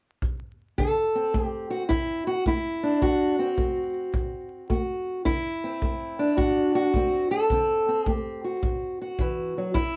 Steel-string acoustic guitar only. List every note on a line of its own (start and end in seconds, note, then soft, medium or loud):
0.78 1.31 D3 medium
0.78 1.45 A4 medium
1.15 2.83 C4 soft
1.34 1.86 A3 medium
1.45 1.70 G4 medium
1.70 1.82 F#4 medium
1.89 2.42 A2 medium
1.89 2.26 E4 medium
2.27 2.46 F#4 medium
2.46 2.98 A3 medium
2.46 3.02 E4 medium
2.83 3.39 D4 medium
3.02 3.54 D3 medium
3.02 4.69 F#4 medium
3.39 5.28 C4 soft
3.58 4.10 A3 medium
4.14 4.66 A2 medium
4.70 5.22 A3 medium
4.70 5.25 F#4 soft
5.25 5.78 D3 medium
5.25 6.37 E4 loud
5.64 6.19 C4 soft
5.82 6.34 A3 medium
6.19 6.94 D4 medium
6.37 6.91 A2 medium
6.37 6.74 F#4 medium
6.75 7.31 F#4 loud
6.96 7.47 A3 medium
6.96 7.49 C4 soft
7.31 8.09 A4 medium
7.51 8.03 D3 medium
7.51 7.87 C4 medium
7.88 9.73 C4 soft
8.07 8.59 A3 medium
8.07 8.43 G4 medium
8.44 9.00 F#4 soft
8.63 9.15 A2 medium
9.02 9.74 F#4 medium
9.20 9.56 E3 medium
9.58 9.76 F#3 medium
9.74 9.96 G2 medium
9.74 9.96 E4 medium